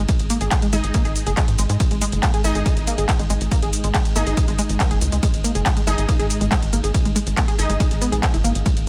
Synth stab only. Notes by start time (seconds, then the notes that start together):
Already playing: D#4 G#4 D#5
0.73 D#4 G#4 D#5
2.44 D#4 G#4 D#5
4.16 D#4 G#4 D#5
5.87 D#4 G#4 D#5
7.59 D#4 G#4 D#5